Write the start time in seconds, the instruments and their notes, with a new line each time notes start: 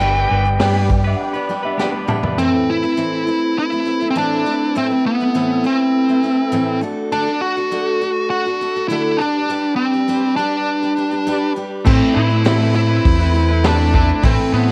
Already playing: picked electric bass G1, tonewheel organ D4 G4 B4 D5, lead electric guitar G5
0.00 clean electric guitar G3 B3 D4 B4, steel-string acoustic guitar G3 D4 G4 B4
0.15 steel-string acoustic guitar D4 G4 B4
0.30 picked electric bass G1, clean electric guitar G3 B3 D4 B4
0.45 steel-string acoustic guitar D4 G4 B4
0.60 picked electric bass G2, clean electric guitar G3 B3 D4 B4, steel-string acoustic guitar G3 D4 G4 B4, upright piano G5, snare, open hi-hat
0.75 clean electric guitar B3 D4 B4, upright piano D5
0.90 steel-string acoustic guitar G3 D4 G4 B4, upright piano G5, muted clean electric guitar stroke, kick
1.05 clean electric guitar B3 D4 B4, upright piano E5
1.16 upright piano F#5
1.21 upright piano G5
1.33 clean electric guitar B3 D4 B4, steel-string acoustic guitar D4 G4 B4, upright piano D5
1.49 steel-string acoustic guitar G3 D4 G4 B4, upright piano G5
1.63 clean electric guitar B3 D4 B4, upright piano E5
1.78 clean electric guitar G3 B3 D4 B4, steel-string acoustic guitar G3 D4 G4 B4, upright piano G5, snare
1.92 clean electric guitar B3 D4 B4
2.07 clean electric guitar G3 B3 D4 B4, steel-string acoustic guitar G3 D4 G4 B4, upright piano E5 A5, mid tom
2.23 clean electric guitar B3 D4 B4, floor tom
2.37 steel-string acoustic guitar A2 E3 A3 C4 E4 B4, tonewheel organ C4 E4 A4 B4, lead electric guitar C4
2.70 lead electric guitar E4
2.83 steel-string acoustic guitar A3 C4 E4 B4
2.97 steel-string acoustic guitar A2 E3 A3 C4 E4 B4
3.27 steel-string acoustic guitar A3 C4 E4 B4
3.58 lead electric guitar E4
3.72 steel-string acoustic guitar A3 C4 E4 B4
3.85 steel-string acoustic guitar A3 C4 E4 B4
4.01 steel-string acoustic guitar A3 C4 E4 B4
4.10 lead electric guitar C4
4.15 steel-string acoustic guitar A2 E3 A3 C4 E4 B4, lead electric guitar D4
4.46 steel-string acoustic guitar A3 C4 E4 B4
4.75 steel-string acoustic guitar A2 E3 A3 C4 E4 B4, lead electric guitar C4, tonewheel organ E4 A4 B4 E5
4.90 steel-string acoustic guitar A3 C4 E4 B4
5.06 lead electric guitar B3
5.20 steel-string acoustic guitar A3 C4 E4 B4
5.34 steel-string acoustic guitar A2 E3 A3 C4 E4 B4
5.64 steel-string acoustic guitar A3 C4 E4 B4, lead electric guitar C4
6.09 steel-string acoustic guitar A3 C4 E4 B4
6.23 steel-string acoustic guitar A3 C4 E4 B4
6.52 steel-string acoustic guitar A2 E3 A3 C4 E4 B4
6.81 steel-string acoustic guitar A3 D4 F#4 A4, tonewheel organ A3 D4 F#4 A4
7.12 steel-string acoustic guitar D3 A3 D4 F#4 A4, lead electric guitar D4
7.26 steel-string acoustic guitar D4 F#4 A4
7.41 lead electric guitar F#4
7.57 steel-string acoustic guitar D4 F#4 A4
7.71 steel-string acoustic guitar D3 A3 D4 F#4 A4
8.02 steel-string acoustic guitar A3 D4 F#4 A4
8.30 lead electric guitar F#4
8.46 steel-string acoustic guitar D4 F#4 A4
8.61 steel-string acoustic guitar A3 D4 F#4 A4
8.76 steel-string acoustic guitar D4 F#4 A4
8.88 steel-string acoustic guitar D3 A3 D4 F#4 A4, lead electric guitar E4
9.17 steel-string acoustic guitar G3 D4, tonewheel organ G3 D4 G4 B4, lead electric guitar D4
9.21 steel-string acoustic guitar G4 B4
9.50 steel-string acoustic guitar G3 D4 G4 B4
9.76 lead electric guitar C4
9.94 steel-string acoustic guitar D4 G4 B4
10.08 steel-string acoustic guitar G3 D4 G4 B4
10.36 steel-string acoustic guitar G3 D4 G4 B4, lead electric guitar D4
10.82 steel-string acoustic guitar D4 G4 B4
10.97 steel-string acoustic guitar G3 D4 G4 B4
11.11 steel-string acoustic guitar D4 G4 B4
11.27 steel-string acoustic guitar G3 D4 G4 B4
11.56 steel-string acoustic guitar G3 D4 G4 B4
11.85 clean electric guitar A2 A3 C4 E4 B4, steel-string acoustic guitar A2 E3 A3 C4 E4 B4, picked electric bass A2, tonewheel organ C4 E4 A4 B4, lead electric guitar C4, kick, crash
12.14 picked electric bass A2, clean electric guitar A3 C4 E4, lead electric guitar E4
12.19 clean electric guitar B4
12.30 steel-string acoustic guitar A3 C4 E4 B4
12.45 steel-string acoustic guitar A2 E3 A3 C4 E4 B4, clean electric guitar A2 A3 C4 E4 B4, picked electric bass A2, snare, open hi-hat
12.60 clean electric guitar C4 E4 B4
12.74 steel-string acoustic guitar A3 C4 E4 B4, lead electric guitar E4, muted clean electric guitar stroke
12.89 clean electric guitar C4 E4 B4
13.05 picked electric bass E2, kick, open hi-hat
13.19 steel-string acoustic guitar A3 C4 E4 B4, clean electric guitar C4 E4 B4
13.34 steel-string acoustic guitar A3 C4 E4 B4
13.49 clean electric guitar C4 E4 B4
13.63 clean electric guitar A2 A3 C4 E4 B4, steel-string acoustic guitar A2 E3 A3 C4 E4 B4, lead electric guitar D4, snare, open hi-hat
13.78 clean electric guitar C4 E4 B4
13.92 clean electric guitar A3 C4 E4 B4, steel-string acoustic guitar A3 C4 E4 B4, lead electric guitar D4, kick
14.08 clean electric guitar C4 E4 B4
14.22 clean electric guitar A2 A3 C4 E4 B4, picked electric bass A2, steel-string acoustic guitar A2 E3 A3 C4 E4 B4, tonewheel organ A3 E4 A4, lead electric guitar C4, kick, open hi-hat
14.52 picked electric bass A2, clean electric guitar A3 C4 E4 B4, lead electric guitar B3
14.67 steel-string acoustic guitar C4 E4 B4, snare